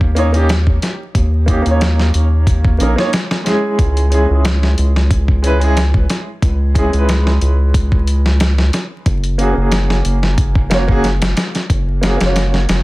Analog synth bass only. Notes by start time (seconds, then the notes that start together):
Already playing: D#2
1.15 D#2
1.66 D#2
2.15 D#2
2.81 A#1
3.79 C#2
4.30 C#2
4.78 C#2
6.43 C#2
6.94 C#2
7.42 C#2
9.06 F#1
9.57 F#1
10.05 F#1
11.70 F#1
12.21 F#1
12.69 F#1